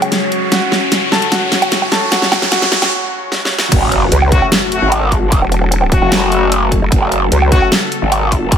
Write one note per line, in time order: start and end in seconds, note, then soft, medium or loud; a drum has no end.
0.00 3.68 C#3 medium
0.00 3.68 F#3 medium
0.00 0.44 G#3 medium
0.00 3.68 C#4 medium
0.00 3.68 F#4 medium
0.00 0.44 G#4 medium
0.00 3.68 C#5 medium
0.00 closed hi-hat medium
0.00 riser medium
0.00 low woodblock medium
0.12 snare medium
0.12 closed hi-hat medium
0.32 closed hi-hat medium
0.52 1.04 F#4 medium
0.52 1.04 F#5 medium
0.52 snare medium
0.52 closed hi-hat medium
0.72 snare medium
0.92 snare medium
0.92 closed hi-hat medium
1.12 1.30 A4 medium
1.12 1.30 A5 medium
1.12 snare medium
1.22 closed hi-hat medium
1.32 1.84 F#4 medium
1.32 1.84 F#5 medium
1.32 snare medium
1.32 closed hi-hat medium
1.52 snare medium
1.52 closed hi-hat medium
1.62 closed hi-hat medium
1.62 low woodblock medium
1.72 snare medium
1.72 closed hi-hat medium
1.82 low woodblock medium
1.92 2.10 A4 medium
1.92 2.10 A5 medium
1.92 snare medium
1.92 closed hi-hat medium
2.12 2.50 F#4 medium
2.12 2.50 F#5 loud
2.12 snare loud
2.12 closed hi-hat medium
2.22 snare medium
2.32 snare loud
2.32 low woodblock medium
2.42 snare medium
2.52 2.90 F#4 medium
2.52 2.90 F#5 loud
2.52 snare medium
2.52 closed hi-hat medium
2.62 snare medium
2.72 snare loud
2.82 snare medium
2.82 closed hi-hat medium
2.82 low woodblock soft
3.32 snare medium
3.45 snare medium
3.59 snare medium
3.72 4.10 F#1 loud
3.72 8.58 C#3 medium
3.72 8.58 F#3 medium
3.72 8.58 A3 medium
3.72 8.58 F#4 medium
3.72 8.58 A4 medium
3.72 kick loud
3.72 closed hi-hat medium
3.72 crash loud
3.72 impact medium
3.82 low woodblock medium
3.92 closed hi-hat medium
4.12 4.41 C#2 loud
4.12 closed hi-hat medium
4.22 low woodblock medium
4.32 4.48 A3 medium
4.32 4.48 C#4 medium
4.32 4.48 F#4 loud
4.32 kick loud
4.32 closed hi-hat medium
4.42 low woodblock medium
4.52 snare loud
4.52 closed hi-hat medium
4.72 4.88 A3 medium
4.72 4.88 C#4 medium
4.72 4.88 F#4 medium
4.72 closed hi-hat medium
4.82 5.23 G#1 medium
4.92 closed hi-hat medium
4.92 low woodblock medium
5.12 kick medium
5.12 closed hi-hat medium
5.23 5.41 G1 medium
5.32 kick loud
5.32 closed hi-hat medium
5.42 6.01 E1 medium
5.42 low woodblock medium
5.52 closed hi-hat medium
5.72 closed hi-hat medium
5.82 low woodblock medium
5.92 6.30 A3 medium
5.92 6.30 C#4 medium
5.92 6.30 F#4 medium
5.92 kick loud
5.92 closed hi-hat medium
6.02 6.80 F#1 loud
6.02 low woodblock medium
6.12 snare loud
6.12 closed hi-hat medium
6.32 6.48 A3 medium
6.32 6.48 C#4 medium
6.32 6.48 F#4 medium
6.32 closed hi-hat medium
6.52 closed hi-hat medium
6.72 kick medium
6.72 closed hi-hat medium
6.82 6.90 F#1 loud
6.92 7.30 F#1 loud
6.92 kick loud
6.92 closed hi-hat medium
7.02 low woodblock medium
7.12 closed hi-hat medium
7.32 7.61 C#2 loud
7.32 closed hi-hat medium
7.42 low woodblock medium
7.52 7.68 A3 medium
7.52 7.68 C#4 medium
7.52 7.68 F#4 loud
7.52 kick loud
7.52 closed hi-hat medium
7.62 low woodblock medium
7.72 snare loud
7.72 closed hi-hat medium
7.92 closed hi-hat medium
8.02 8.58 G#1 loud
8.12 closed hi-hat medium
8.12 low woodblock medium
8.32 kick medium
8.32 closed hi-hat medium
8.52 kick loud
8.52 closed hi-hat medium